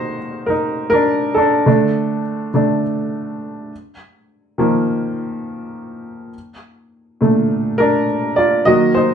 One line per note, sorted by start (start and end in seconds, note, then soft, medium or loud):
0.00 0.16 D#3 soft
0.00 0.17 A#3 soft
0.00 0.46 D#4 medium
0.00 1.69 F#4 medium
0.00 0.51 C5 medium
0.00 1.69 D#5 medium
0.46 0.91 D#4 medium
0.46 0.88 A#4 medium
0.90 1.34 D4 medium
0.90 1.37 A#4 medium
1.34 1.66 D4 medium
1.34 2.19 A4 medium
1.66 2.50 D3 soft
1.66 2.50 A3 soft
1.66 2.50 D4 medium
2.54 2.80 D3 soft
2.54 2.81 A3 soft
2.54 2.81 D4 soft
4.58 6.29 D#3 soft
4.58 6.30 F3 soft
4.58 6.30 A#3 medium
7.21 8.04 A#2 soft
7.21 8.05 D3 soft
7.21 8.05 A3 soft
7.78 8.34 D4 medium
7.78 8.39 A#4 medium
8.36 8.65 F4 medium
8.36 8.67 D5 medium
8.65 9.14 D#3 soft
8.65 9.14 F#3 soft
8.65 9.14 A#3 medium
8.65 8.94 F#4 medium
8.65 8.96 D#5 medium
8.95 9.14 D#4 medium
8.95 9.14 C5 medium